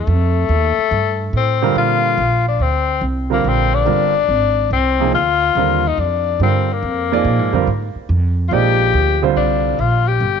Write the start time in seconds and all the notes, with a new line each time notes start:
Already playing: A3
0.07 F2
0.49 D#2
0.78 muted upright bass stroke
0.91 G2
1.33 A2 C4
1.62 D3 G3 C4 F4 A#4
1.75 A#2 F4
2.18 A#1
2.48 D4
2.59 D2 C4
3.01 C2
3.30 D3 G3 A#3 C4 F4 A#4
3.44 A#1 C4
3.74 D4
3.85 G1 D3 G3 C4 F4 A#4
4.28 G#1
4.71 C2 C4
5.00 C3 F3 A#3 D#4 G#4
5.13 D2 F4
5.55 D#2 D3 G3 C4 F4 A#4
5.88 D#4
5.97 F2 D4
6.40 G2 D3 G3 C4 F4 A#4
6.73 A#3
6.83 F2
7.12 F3 A#3 D#4 G#4 D5
7.25 A#2
7.39 G#2
7.53 F2 D3 G3 C4 F4 A#4
7.67 G#2
7.95 muted upright bass stroke
8.09 F2
8.48 A#1 F3 F4
8.52 G#3 A#3 D#4 G4 D5
8.94 D2
9.22 D3 G3 C4 F4 C5
9.36 C2 D4
9.79 A#1 F4
10.07 G4
10.20 G1